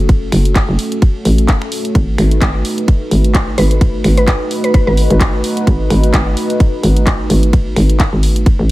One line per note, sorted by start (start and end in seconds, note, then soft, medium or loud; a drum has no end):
0.00 0.31 F#1 loud
0.00 8.71 A3 medium
0.00 1.91 C#4 medium
0.00 1.91 F#4 medium
0.00 1.91 A4 medium
0.09 kick loud
0.09 closed hi-hat soft
0.09 ride medium
0.32 0.67 F#1 loud
0.32 finger snap medium
0.32 open hi-hat loud
0.45 closed hi-hat medium
0.56 kick loud
0.56 clap loud
0.56 closed hi-hat soft
0.56 ride medium
0.69 0.77 F#1 medium
0.79 open hi-hat loud
0.92 closed hi-hat medium
1.02 kick loud
1.02 closed hi-hat medium
1.02 ride medium
1.25 1.47 A1 medium
1.25 open hi-hat loud
1.38 closed hi-hat medium
1.49 kick loud
1.49 clap loud
1.49 closed hi-hat medium
1.49 ride medium
1.62 finger snap medium
1.72 open hi-hat loud
1.85 closed hi-hat medium
1.95 2.17 G#1 loud
1.95 8.71 D#4 medium
1.95 8.71 F#4 medium
1.95 8.71 B4 medium
1.95 kick loud
1.95 closed hi-hat medium
1.95 ride medium
2.18 2.40 G#1 loud
2.18 finger snap medium
2.18 open hi-hat loud
2.31 closed hi-hat medium
2.42 2.63 G#1 loud
2.42 kick loud
2.42 clap loud
2.42 closed hi-hat soft
2.42 ride medium
2.65 open hi-hat loud
2.78 closed hi-hat medium
2.88 kick loud
2.88 closed hi-hat soft
2.88 ride medium
3.11 3.56 G#1 medium
3.11 open hi-hat loud
3.24 closed hi-hat medium
3.35 kick loud
3.35 clap loud
3.35 closed hi-hat medium
3.35 ride medium
3.58 4.03 G#1 loud
3.58 4.15 B4 medium
3.58 open hi-hat loud
3.71 closed hi-hat medium
3.81 kick loud
3.81 closed hi-hat medium
3.81 ride medium
4.04 4.39 G#1 medium
4.04 finger snap medium
4.04 open hi-hat loud
4.17 4.27 B4 medium
4.17 closed hi-hat medium
4.28 kick loud
4.28 clap loud
4.28 closed hi-hat medium
4.28 ride medium
4.51 open hi-hat loud
4.64 4.71 B4 loud
4.64 closed hi-hat medium
4.74 4.83 B4 medium
4.74 kick loud
4.74 closed hi-hat soft
4.74 ride medium
4.87 5.08 G#1 loud
4.87 5.21 B4 medium
4.97 open hi-hat loud
5.10 5.42 G#1 loud
5.10 closed hi-hat medium
5.21 kick loud
5.21 clap loud
5.21 closed hi-hat medium
5.21 ride medium
5.44 open hi-hat loud
5.57 closed hi-hat medium
5.67 5.89 G#1 loud
5.67 kick loud
5.67 closed hi-hat medium
5.67 ride medium
5.90 6.12 G#1 loud
5.90 finger snap medium
5.90 open hi-hat loud
6.04 closed hi-hat medium
6.14 6.35 G#1 loud
6.14 kick loud
6.14 clap loud
6.14 closed hi-hat medium
6.14 ride medium
6.37 open hi-hat loud
6.50 closed hi-hat medium
6.60 kick loud
6.60 closed hi-hat medium
6.60 ride medium
6.83 7.28 G#1 loud
6.83 open hi-hat loud
6.97 closed hi-hat medium
7.07 kick loud
7.07 clap loud
7.07 closed hi-hat medium
7.07 ride medium
7.30 7.75 G#1 loud
7.30 open hi-hat loud
7.43 closed hi-hat medium
7.53 kick loud
7.53 closed hi-hat medium
7.53 ride medium
7.76 8.11 G#1 loud
7.76 finger snap medium
7.76 open hi-hat loud
7.90 closed hi-hat medium
8.00 kick loud
8.00 clap loud
8.00 closed hi-hat medium
8.00 ride medium
8.13 8.57 G#1 medium
8.23 open hi-hat loud
8.36 closed hi-hat medium
8.46 kick loud
8.46 closed hi-hat medium
8.46 ride medium
8.59 8.71 A1 loud